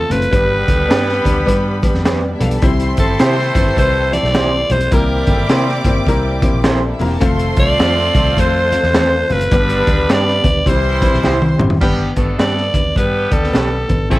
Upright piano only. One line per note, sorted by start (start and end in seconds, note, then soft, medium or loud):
0.09 0.27 A3 medium
0.09 0.27 C4 medium
0.09 0.27 F4 medium
0.09 0.27 A4 medium
0.09 0.28 C5 medium
0.31 0.59 G3 loud
0.31 0.59 B3 medium
0.31 0.59 D4 loud
0.31 0.60 G4 medium
0.31 0.60 B4 loud
0.67 0.85 G3 medium
0.67 0.85 B3 medium
0.67 0.85 D4 medium
0.67 0.85 G4 medium
0.67 0.85 A4 medium
0.88 1.16 G3 medium
0.88 1.16 B3 medium
0.88 1.16 D4 medium
0.88 1.17 G4 medium
0.88 1.17 B4 loud
1.24 1.42 G3 medium
1.24 1.42 B3 medium
1.24 1.42 D4 medium
1.24 1.42 G4 medium
1.24 1.42 B4 loud
1.45 1.74 G3 loud
1.45 1.73 B3 medium
1.45 1.74 D4 medium
1.45 1.74 G4 loud
1.45 1.74 B4 loud
1.82 1.99 G3 medium
1.82 2.00 B3 medium
1.82 2.00 D4 medium
1.82 2.00 G4 medium
1.82 2.00 B4 medium
2.05 2.32 G3 medium
2.05 2.32 B3 medium
2.05 2.32 D4 medium
2.05 2.32 G4 medium
2.05 2.32 B4 medium
2.39 2.56 G3 medium
2.39 2.57 B3 medium
2.39 2.57 D4 medium
2.39 2.57 G4 medium
2.39 2.57 A4 loud
2.62 2.89 G3 loud
2.62 2.90 C4 loud
2.62 2.90 E4 loud
2.62 2.90 G4 loud
2.62 2.90 C5 loud
2.98 3.15 G3 medium
2.98 3.15 C4 medium
2.98 3.15 E4 medium
2.98 3.15 G4 medium
2.98 3.15 C5 medium
3.20 3.47 G3 medium
3.20 3.47 C4 medium
3.20 3.47 E4 medium
3.20 3.47 G4 medium
3.20 3.48 C5 medium
3.54 3.72 G3 medium
3.54 3.72 C4 medium
3.54 3.72 E4 medium
3.54 3.72 G4 medium
3.54 3.73 B4 medium
3.76 4.04 G3 medium
3.76 4.04 C4 medium
3.76 4.04 E4 medium
3.76 4.04 G4 medium
3.76 4.05 B4 loud
4.12 4.29 G3 medium
4.12 4.29 C4 medium
4.12 4.29 E4 medium
4.12 4.30 G4 medium
4.12 4.30 D5 medium
4.33 4.61 G3 medium
4.33 4.61 C4 medium
4.33 4.61 E4 medium
4.33 4.61 G4 medium
4.33 4.62 D5 medium
4.70 4.87 G3 medium
4.70 4.87 C4 medium
4.70 4.87 E4 medium
4.70 4.88 G4 medium
4.70 4.88 C5 medium
4.91 5.19 A#3 loud
4.91 5.19 C4 medium
4.91 5.19 E4 loud
4.91 5.19 G4 loud
4.91 5.20 A#4 loud
5.28 5.45 A#3 medium
5.28 5.44 C4 medium
5.28 5.45 E4 medium
5.28 5.45 G4 medium
5.28 5.45 A4 medium
5.50 5.77 A#3 medium
5.50 5.77 C4 medium
5.50 5.77 E4 medium
5.50 5.77 G4 medium
5.50 5.77 A#4 medium
5.85 6.02 A#3 medium
5.85 6.02 C4 medium
5.85 6.03 E4 medium
5.85 6.03 G4 medium
5.85 6.02 C5 medium
6.07 6.34 A#3 loud
6.07 6.34 C4 loud
6.07 6.35 E4 loud
6.07 6.35 G4 loud
6.07 6.35 A#4 loud
6.42 6.59 A#3 medium
6.42 6.59 C4 medium
6.42 6.59 E4 medium
6.42 6.60 G4 medium
6.42 6.60 C5 loud
6.64 6.91 A#3 medium
6.64 6.91 C4 medium
6.64 6.92 E4 medium
6.64 6.91 G4 medium
6.64 6.92 A4 loud
6.99 7.16 A#3 loud
6.99 7.17 C4 medium
6.99 7.17 E4 medium
6.99 7.17 G4 medium
6.99 7.17 A#4 loud
7.21 7.48 A3 loud
7.21 7.48 C4 loud
7.21 7.49 F4 loud
7.21 7.49 A4 loud
7.21 7.49 C5 loud
7.56 7.74 A3 medium
7.56 7.74 C4 medium
7.56 7.74 F4 medium
7.56 7.74 A4 medium
7.56 7.74 C5 medium
7.79 8.06 A3 medium
7.79 8.06 C4 medium
7.79 8.06 F4 medium
7.79 8.06 A4 medium
7.79 8.07 C5 medium
8.14 8.31 A3 medium
8.14 8.31 C4 medium
8.14 8.32 F4 medium
8.14 8.32 A4 medium
8.14 8.32 D5 medium
8.36 8.63 A3 medium
8.36 8.63 C4 medium
8.36 8.64 F4 medium
8.36 8.64 A4 medium
8.36 8.64 C5 loud
8.72 8.89 A3 medium
8.72 8.89 C4 medium
8.72 8.89 F4 medium
8.72 8.89 A4 medium
8.72 8.89 C5 medium
8.94 9.21 A3 medium
8.94 9.21 C4 medium
8.94 9.21 F4 medium
8.94 9.21 A4 medium
8.94 9.22 B4 medium
9.28 9.46 A3 medium
9.28 9.46 C4 medium
9.28 9.46 F4 medium
9.28 9.47 A4 medium
9.28 9.47 C5 medium
9.52 9.79 G3 loud
9.52 9.79 B3 loud
9.52 9.79 D4 medium
9.52 9.79 G4 loud
9.52 9.79 B4 loud
9.87 10.04 G3 medium
9.87 10.04 B3 medium
9.87 10.04 D4 medium
9.87 10.04 G4 medium
9.87 10.04 D5 medium
10.09 10.36 G3 medium
10.09 10.36 B3 medium
10.09 10.36 D4 medium
10.09 10.36 G4 medium
10.09 10.36 B4 medium
10.42 10.60 G3 medium
10.42 10.60 B3 medium
10.42 10.60 D4 medium
10.42 10.61 G4 medium
10.42 10.61 B4 medium
10.66 10.93 G3 medium
10.66 10.93 C4 medium
10.66 10.93 E4 medium
10.66 10.93 G4 medium
10.66 10.93 C5 loud
11.01 11.18 G3 medium
11.01 11.18 C4 medium
11.01 11.18 E4 medium
11.01 11.18 G4 medium
11.01 11.19 B4 medium
11.22 11.50 G3 medium
11.22 11.50 C4 medium
11.22 11.50 E4 medium
11.22 11.51 G4 medium
11.22 11.51 C5 medium
11.58 11.76 G3 loud
11.58 11.75 C4 medium
11.58 11.76 E4 medium
11.58 11.76 G4 medium
11.58 11.76 C5 loud
11.81 12.08 B3 loud
11.81 12.08 D4 loud
11.81 12.09 G4 loud
11.81 12.09 B4 loud
12.16 12.33 B3 medium
12.16 12.33 D4 medium
12.16 12.33 G4 medium
12.16 12.34 B4 medium
12.37 12.65 B3 medium
12.37 12.65 D4 medium
12.37 12.65 G4 medium
12.37 12.65 D5 medium
12.73 12.91 B3 medium
12.73 12.91 D4 medium
12.73 12.91 G4 medium
12.73 12.91 B4 medium
12.95 13.23 B3 medium
12.95 13.23 D4 medium
12.95 13.23 G4 medium
12.95 13.23 B4 medium
13.30 13.48 B3 medium
13.30 13.48 D4 medium
13.30 13.48 G4 medium
13.30 13.48 D5 medium
13.52 13.80 B3 medium
13.52 13.80 D4 medium
13.52 13.80 G4 medium
13.52 13.80 B4 medium
13.88 14.05 B3 medium
13.88 14.06 D4 medium
13.88 14.06 G4 medium
13.88 14.06 B4 medium
14.10 14.19 C4 loud
14.10 14.19 E4 medium
14.10 14.19 A4 medium
14.10 14.19 C5 loud